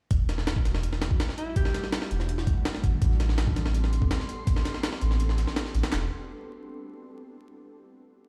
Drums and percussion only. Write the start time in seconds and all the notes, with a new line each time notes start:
0.11 kick, closed hi-hat
0.29 snare, closed hi-hat
0.38 snare
0.47 snare, closed hi-hat
0.56 kick
0.65 snare, closed hi-hat
0.75 snare
0.83 closed hi-hat
0.93 snare
1.02 snare, closed hi-hat
1.11 kick
1.20 snare, closed hi-hat
1.29 snare
1.38 closed hi-hat
1.56 kick, closed hi-hat
1.65 snare
1.74 snare, closed hi-hat
1.84 snare
1.92 snare, closed hi-hat
2.02 snare
2.11 closed hi-hat
2.20 snare
2.29 closed hi-hat
2.38 snare
2.47 kick, closed hi-hat
2.65 snare, closed hi-hat
2.75 snare
2.84 kick, closed hi-hat
3.02 kick, closed hi-hat
3.11 snare
3.19 snare, closed hi-hat
3.28 snare, closed hi-hat
3.38 snare, closed hi-hat
3.47 kick, snare
3.56 snare, closed hi-hat
3.66 snare
3.74 closed hi-hat
3.84 snare
3.93 closed hi-hat
4.02 kick
4.11 snare, closed hi-hat
4.20 snare, closed hi-hat
4.29 closed hi-hat
4.47 kick, closed hi-hat
4.56 snare
4.65 snare, closed hi-hat
4.74 snare
4.83 snare, closed hi-hat
4.93 snare
5.01 closed hi-hat
5.11 snare
5.20 snare, closed hi-hat
5.29 snare, closed hi-hat
5.38 snare, closed hi-hat
5.47 snare
5.56 snare, closed hi-hat
5.65 snare
5.74 closed hi-hat
5.83 snare, closed hi-hat
5.92 snare, clap